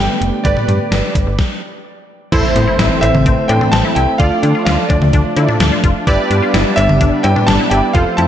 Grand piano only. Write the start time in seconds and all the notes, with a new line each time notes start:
Already playing: G5
0.44 D5
3.01 E5
3.48 G5
3.72 A5
3.95 G5
4.18 F5
4.65 F5
4.89 D5
6.76 E5
7.23 G5
7.47 A5
7.70 G5
7.93 F5
8.17 A5